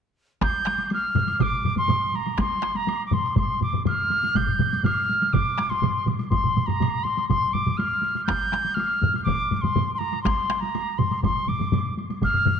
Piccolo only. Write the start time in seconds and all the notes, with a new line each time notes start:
0.43 G6
0.94 F6
1.42 D6
1.78 C6
2.15 A#5
2.40 C6
2.76 A#5
3.06 D6
3.13 C6
3.38 C6
3.63 D6
3.87 F6
4.36 G6
4.84 F6
5.33 D6
5.70 C6
6.30 C6
6.66 A#5
7.04 C6
7.28 C6
7.53 D6
7.77 F6
8.25 G6
8.74 F6
9.24 D6
9.56 D6
9.61 C6
9.94 C6
9.98 A#5
10.22 C6
10.60 A#5
10.98 C6
11.24 C6
11.48 D6
12.24 F6